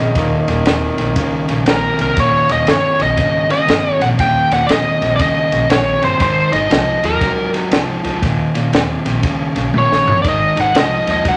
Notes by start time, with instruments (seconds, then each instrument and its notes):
Already playing: overdriven electric guitar D#2 C3, lead electric guitar D#5
0.00 tenor saxophone C#3
0.15 upright bass D#1, overdriven electric guitar D#2 A#2, tenor saxophone D#3, kick, snare, ride
0.34 tenor saxophone D#3
0.48 upright bass D#1, overdriven electric guitar D#2 A#2, snare, ride
0.65 upright bass D#1, overdriven electric guitar D#2 C3, snare, ride
0.98 upright bass A#1, overdriven electric guitar D#2 C3, snare, ride
1.16 upright bass C#2, overdriven electric guitar D#2 C#3, kick, snare, ride
1.48 upright bass A#1, overdriven electric guitar D#2 C#3, snare, ride
1.66 upright bass A#1, overdriven electric guitar D#2 C3, lead electric guitar A#4, snare, ride
1.98 upright bass C2, overdriven electric guitar D#2 C3, lead electric guitar A#4, snare, ride
2.17 upright bass D#1, overdriven electric guitar D#2 A#2, lead electric guitar C#5, kick, snare, ride
2.49 upright bass D#1, overdriven electric guitar D#2 A#2, lead electric guitar D#5, snare, ride
2.66 upright bass G1, overdriven electric guitar D#2 C3, snare, ride
2.71 lead electric guitar C#5
2.99 upright bass A#1, overdriven electric guitar D#2 C3, lead electric guitar D#5, snare, ride
3.16 upright bass G#1, overdriven electric guitar D#2 C#3, kick, snare, ride
3.49 overdriven electric guitar D#2 C#3, lead electric guitar D#5, snare, ride
3.66 upright bass G1, overdriven electric guitar D#2 C3, snare, ride
3.99 upright bass A#1, overdriven electric guitar D#2 C3, lead electric guitar F#5, snare, ride
4.18 upright bass D#1, overdriven electric guitar D#2 A#2, lead electric guitar G5, kick, snare, ride
4.51 upright bass D#1, overdriven electric guitar D#2 A#2, lead electric guitar F#5, snare, ride
4.66 upright bass D#1, overdriven electric guitar D#2 C3, lead electric guitar D5, ride
4.71 lead electric guitar D#5, snare
5.01 upright bass A#1, overdriven electric guitar D#2 C3, snare, ride
5.16 upright bass C#2, overdriven electric guitar D#2, lead electric guitar D5, kick, ride
5.20 overdriven electric guitar C#3, lead electric guitar D#5, snare
5.51 upright bass A#1, overdriven electric guitar D#2 C#3, snare, ride
5.69 upright bass A#1, overdriven electric guitar D#2 C3, lead electric guitar C#5, snare, ride
6.02 upright bass G1, overdriven electric guitar D#2 C3, lead electric guitar C5, snare, ride
6.19 upright bass G#1, overdriven electric guitar G#2 D#3, lead electric guitar C5, kick, snare, ride
6.51 upright bass G#1, overdriven electric guitar G#2 D#3, lead electric guitar D#5, snare, ride
6.70 upright bass C2, overdriven electric guitar G#2 F3, snare, ride
7.03 upright bass D#2, overdriven electric guitar G#2 F3, lead electric guitar A#4, snare, ride
7.21 upright bass C#2, overdriven electric guitar G#2 F#3, kick, snare, ride
7.53 overdriven electric guitar G#2 F#3, snare, ride
7.71 upright bass C2, overdriven electric guitar G#2 F3, snare, ride
8.04 upright bass C#2, overdriven electric guitar G#2 F3, snare, ride
8.22 upright bass D#1, overdriven electric guitar D#2 A#2, kick, snare, ride
8.54 upright bass D#1, overdriven electric guitar D#2 A#2, snare, ride
8.72 upright bass D#1, overdriven electric guitar D#2 C3, snare, ride
9.05 upright bass A#1, overdriven electric guitar D#2 C3, snare, ride
9.22 upright bass C#2, overdriven electric guitar D#2 C#3, kick, snare, ride
9.55 upright bass A#1, overdriven electric guitar D#2 C#3, snare, ride
9.73 upright bass A#1, overdriven electric guitar D#2 C3, high tom
9.78 lead electric guitar C#5
9.92 snare
10.06 upright bass G1, overdriven electric guitar D#2 C3, floor tom
10.22 upright bass G#1, overdriven electric guitar G#2 D#3, lead electric guitar D5, kick, snare, ride
10.29 lead electric guitar D#5
10.56 upright bass G#1, overdriven electric guitar G#2 D#3, snare, ride
10.61 lead electric guitar F#5
10.74 upright bass C2, overdriven electric guitar G#2 F3, snare, ride
10.79 lead electric guitar D#5
11.07 upright bass D#2, overdriven electric guitar G#2 F3, snare, ride
11.12 lead electric guitar D#5
11.24 upright bass C#2, overdriven electric guitar G#2 F#3, kick, snare, ride
11.29 lead electric guitar F#5